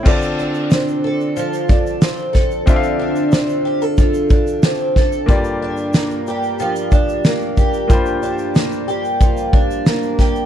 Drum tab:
CC |x---------------|----------------|----------------|----------------|
SH |-xxxxx-xxxxxxxxx|xx-xxx-xxxxxxx-x|xx-xxxxxxxxxxxxx|xxxxxxxxxx-xxxxx|
SD |----o-------o-o-|----o-------o-o-|----o-------o---|----o-------o-o-|
BD |o---------o---o-|o-------o-o---o-|o---------o---o-|o-------o-o---o-|